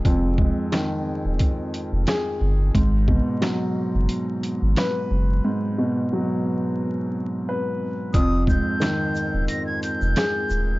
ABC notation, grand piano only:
X:1
M:4/4
L:1/8
Q:"Swing 16ths" 1/4=89
K:Ablyd
V:1 name="Grand piano" clef=bass
[F,,A,,E,A] A, E,4 A2 | A,, _C, _G,4 _c2 | A,, _C, _G,4 _c2 | F,, A,, E,4 A2 |]